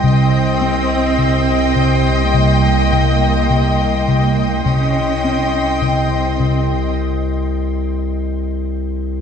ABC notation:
X:1
M:4/4
L:1/8
Q:1/4=52
K:Cphr
V:1 name="Ambient pad"
[egc']8 | [egc']4 z4 |]
V:2 name="Violin section"
[eg]8 | [eg]4 z4 |]
V:3 name="Cello section"
C4 B,4 | D2 C2 z4 |]
V:4 name="Analog synth bass" clef=bass
C, C C, C, C, C, C, C, | C, C C, C, z4 |]
V:5 name="Double bass section" clef=bass
C,,8 | C,,4 z4 |]
V:6 name="Sub bass" clef=bass
C,,8 | C,,8 |]